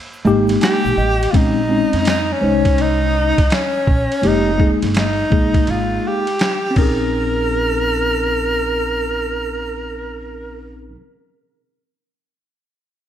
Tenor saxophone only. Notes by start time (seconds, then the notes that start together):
0.64 G4
1.31 F4
1.37 D#4
2.10 D#4
2.32 C#4
2.81 D#4
3.54 C#4
4.27 D#4
4.99 D#4
5.70 F4
6.07 G4
6.78 A#4